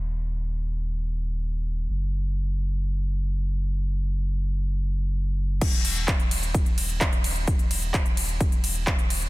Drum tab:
CC |----------------|----------------|----------------|x---------------|
RD |----------------|----------------|----------------|--x---x---x---x-|
HH |----------------|----------------|----------------|xxoxxxoxxxoxxxox|
CP |----------------|----------------|----------------|----x-------x---|
BD |----------------|----------------|----------------|o---o---o---o---|

CC |----------------|
RD |--x---x---x---x-|
HH |xxoxxxoxxxoxxxox|
CP |----x-------x---|
BD |o---o---o---o---|